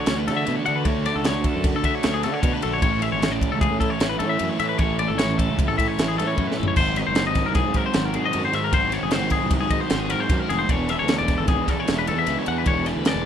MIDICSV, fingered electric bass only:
0, 0, Header, 1, 2, 480
1, 0, Start_track
1, 0, Key_signature, 3, "major"
1, 0, Tempo, 393443
1, 1055, Time_signature, 5, 2, 24, 8
1, 16171, End_track
2, 0, Start_track
2, 0, Title_t, "Fingered electric bass"
2, 0, Program_c, 0, 33
2, 91, Note_on_c, 0, 38, 90
2, 347, Note_on_c, 0, 50, 91
2, 365, Note_off_c, 0, 38, 0
2, 545, Note_off_c, 0, 50, 0
2, 586, Note_on_c, 0, 47, 112
2, 683, Note_off_c, 0, 47, 0
2, 828, Note_on_c, 0, 50, 91
2, 1026, Note_off_c, 0, 50, 0
2, 1048, Note_on_c, 0, 38, 109
2, 1355, Note_off_c, 0, 38, 0
2, 1413, Note_on_c, 0, 37, 95
2, 1656, Note_off_c, 0, 37, 0
2, 1656, Note_on_c, 0, 38, 105
2, 1859, Note_off_c, 0, 38, 0
2, 1900, Note_on_c, 0, 42, 95
2, 2101, Note_off_c, 0, 42, 0
2, 2131, Note_on_c, 0, 50, 90
2, 2336, Note_off_c, 0, 50, 0
2, 2504, Note_on_c, 0, 38, 89
2, 2750, Note_on_c, 0, 50, 91
2, 2768, Note_off_c, 0, 38, 0
2, 2947, Note_off_c, 0, 50, 0
2, 2970, Note_on_c, 0, 47, 104
2, 3074, Note_off_c, 0, 47, 0
2, 3228, Note_on_c, 0, 34, 90
2, 3426, Note_off_c, 0, 34, 0
2, 3448, Note_on_c, 0, 33, 114
2, 3756, Note_off_c, 0, 33, 0
2, 3815, Note_on_c, 0, 32, 92
2, 4051, Note_off_c, 0, 32, 0
2, 4051, Note_on_c, 0, 33, 100
2, 4256, Note_off_c, 0, 33, 0
2, 4288, Note_on_c, 0, 37, 91
2, 4495, Note_off_c, 0, 37, 0
2, 4525, Note_on_c, 0, 45, 97
2, 4733, Note_off_c, 0, 45, 0
2, 4878, Note_on_c, 0, 33, 95
2, 5129, Note_on_c, 0, 45, 92
2, 5147, Note_off_c, 0, 33, 0
2, 5335, Note_off_c, 0, 45, 0
2, 5377, Note_on_c, 0, 42, 100
2, 5479, Note_off_c, 0, 42, 0
2, 5607, Note_on_c, 0, 45, 95
2, 5814, Note_off_c, 0, 45, 0
2, 5855, Note_on_c, 0, 33, 111
2, 6160, Note_off_c, 0, 33, 0
2, 6219, Note_on_c, 0, 32, 92
2, 6471, Note_off_c, 0, 32, 0
2, 6471, Note_on_c, 0, 33, 106
2, 6667, Note_off_c, 0, 33, 0
2, 6711, Note_on_c, 0, 37, 91
2, 6908, Note_off_c, 0, 37, 0
2, 6944, Note_on_c, 0, 45, 90
2, 7144, Note_off_c, 0, 45, 0
2, 7304, Note_on_c, 0, 33, 94
2, 7563, Note_on_c, 0, 45, 86
2, 7582, Note_off_c, 0, 33, 0
2, 7755, Note_off_c, 0, 45, 0
2, 7788, Note_on_c, 0, 42, 104
2, 7884, Note_off_c, 0, 42, 0
2, 8053, Note_on_c, 0, 33, 93
2, 8240, Note_off_c, 0, 33, 0
2, 8260, Note_on_c, 0, 32, 101
2, 8563, Note_off_c, 0, 32, 0
2, 8642, Note_on_c, 0, 30, 91
2, 8879, Note_off_c, 0, 30, 0
2, 8879, Note_on_c, 0, 32, 91
2, 9072, Note_off_c, 0, 32, 0
2, 9114, Note_on_c, 0, 36, 94
2, 9309, Note_off_c, 0, 36, 0
2, 9353, Note_on_c, 0, 44, 95
2, 9548, Note_off_c, 0, 44, 0
2, 9711, Note_on_c, 0, 32, 91
2, 9950, Note_on_c, 0, 44, 85
2, 9968, Note_off_c, 0, 32, 0
2, 10146, Note_off_c, 0, 44, 0
2, 10185, Note_on_c, 0, 42, 97
2, 10282, Note_off_c, 0, 42, 0
2, 10413, Note_on_c, 0, 44, 88
2, 10617, Note_off_c, 0, 44, 0
2, 10651, Note_on_c, 0, 32, 102
2, 10957, Note_off_c, 0, 32, 0
2, 11019, Note_on_c, 0, 30, 94
2, 11251, Note_off_c, 0, 30, 0
2, 11251, Note_on_c, 0, 32, 102
2, 11455, Note_off_c, 0, 32, 0
2, 11509, Note_on_c, 0, 36, 94
2, 11706, Note_off_c, 0, 36, 0
2, 11740, Note_on_c, 0, 44, 92
2, 11941, Note_off_c, 0, 44, 0
2, 12091, Note_on_c, 0, 32, 93
2, 12345, Note_on_c, 0, 44, 96
2, 12363, Note_off_c, 0, 32, 0
2, 12544, Note_off_c, 0, 44, 0
2, 12564, Note_on_c, 0, 42, 109
2, 12670, Note_off_c, 0, 42, 0
2, 12822, Note_on_c, 0, 29, 99
2, 13022, Note_off_c, 0, 29, 0
2, 13050, Note_on_c, 0, 28, 112
2, 13357, Note_off_c, 0, 28, 0
2, 13442, Note_on_c, 0, 38, 97
2, 13676, Note_on_c, 0, 28, 96
2, 13695, Note_off_c, 0, 38, 0
2, 13870, Note_off_c, 0, 28, 0
2, 13911, Note_on_c, 0, 32, 98
2, 14107, Note_off_c, 0, 32, 0
2, 14152, Note_on_c, 0, 40, 94
2, 14348, Note_off_c, 0, 40, 0
2, 14510, Note_on_c, 0, 28, 97
2, 14750, Note_on_c, 0, 40, 91
2, 14768, Note_off_c, 0, 28, 0
2, 14947, Note_off_c, 0, 40, 0
2, 14978, Note_on_c, 0, 37, 102
2, 15078, Note_off_c, 0, 37, 0
2, 15225, Note_on_c, 0, 40, 95
2, 15424, Note_off_c, 0, 40, 0
2, 15455, Note_on_c, 0, 28, 105
2, 15761, Note_off_c, 0, 28, 0
2, 15820, Note_on_c, 0, 38, 91
2, 16053, Note_on_c, 0, 28, 102
2, 16071, Note_off_c, 0, 38, 0
2, 16171, Note_off_c, 0, 28, 0
2, 16171, End_track
0, 0, End_of_file